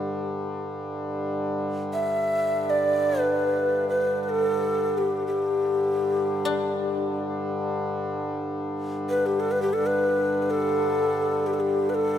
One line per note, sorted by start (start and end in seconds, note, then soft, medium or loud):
0.00 9.71 G2 medium
0.00 9.70 D3 medium
1.93 2.71 E5 medium
2.70 3.21 D5 medium
3.19 3.88 B4 medium
3.89 4.23 B4 medium
4.23 4.31 B4 medium
4.29 4.99 A4 medium
4.98 5.26 G4 medium
5.27 7.18 G4 medium
6.45 12.18 D4 soft
9.10 9.28 B4 medium
9.26 9.42 G4 medium
9.40 9.53 A4 medium
9.51 9.62 B4 medium
9.62 9.75 G4 medium
9.72 12.18 G2 medium
9.72 12.18 D3 medium
9.72 9.88 A4 medium
9.86 10.42 B4 medium
10.42 10.52 B4 soft
10.50 11.48 A4 medium
11.46 11.55 G4 medium
11.54 11.62 A4 medium
11.60 11.91 G4 medium
11.89 11.96 B4 medium
11.95 12.18 A4 medium